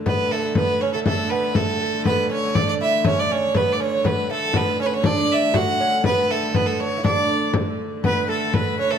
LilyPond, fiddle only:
\new Staff \with { instrumentName = "Fiddle" } { \time 2/4 \key d \major \tempo 4 = 120 b'8 a'8 b'8 cis''16 a'16 | a'8 b'8 a'4 | b'8 cis''8 d''16 d''16 e''8 | cis''16 d''16 cis''8 b'16. d''32 cis''8 |
b'8 a'8 b'8 cis''32 b'32 cis''16 | d''8 e''8 fis''4 | b'8 a'8 b'16 a'16 cis''8 | d''4 r4 |
b'8 a'8 b'8 cis''16 a'16 | }